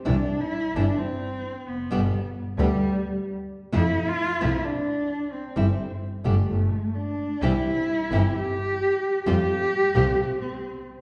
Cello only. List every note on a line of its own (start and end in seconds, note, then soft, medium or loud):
0.06 0.42 D4 medium
0.41 0.77 E4 loud
0.75 1.00 D4 loud
0.98 1.70 C4 loud
1.68 2.37 B3 medium
2.58 3.23 G3 loud
3.74 4.09 E4 loud
4.08 4.44 F4 loud
4.42 4.66 E4 loud
4.65 5.34 D4 loud
5.33 6.02 C4 medium
6.25 6.96 A3 medium
6.95 7.43 D4 medium
7.41 8.36 E4 loud
8.34 9.25 G4 loud
9.25 10.35 G4 loud
10.41 10.83 C4 medium